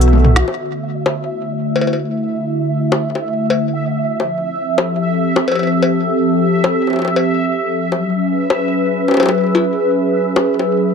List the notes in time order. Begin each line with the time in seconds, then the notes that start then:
Already playing: B1 E3 B3 F#4 A4 E5
0.01 closed hi-hat
0.13 high tom
0.15 high tom
0.18 high tom
0.20 high tom
0.22 mid tom, high tom
0.36 snare
0.48 D3 E5, high bongo
0.64 A3
0.93 E4
1.06 high bongo
1.76 cowbell
1.81 cowbell
1.87 cowbell
1.93 cowbell
2.92 high bongo
3.15 high bongo
3.50 cowbell
4.20 F3, high bongo
4.37 C4
4.68 A4
4.73 G4
4.78 high bongo
5.36 high bongo
5.48 cowbell
5.52 cowbell
5.55 cowbell
5.59 cowbell
5.63 cowbell
5.67 cowbell
5.83 cowbell
6.64 high bongo
6.87 high bongo
6.90 high bongo
6.93 high bongo
6.96 high bongo
6.99 high bongo
7.02 high bongo
7.05 high bongo
7.08 high bongo
7.16 cowbell
7.92 F#3, high bongo
7.97 C#4
8.24 G#4 B4
8.50 high bongo
9.08 high bongo
9.11 high bongo
9.14 high bongo
9.17 cowbell, high bongo
9.20 high bongo
9.23 high bongo
9.26 high bongo
9.29 high bongo
9.55 cowbell
10.36 high bongo
10.59 high bongo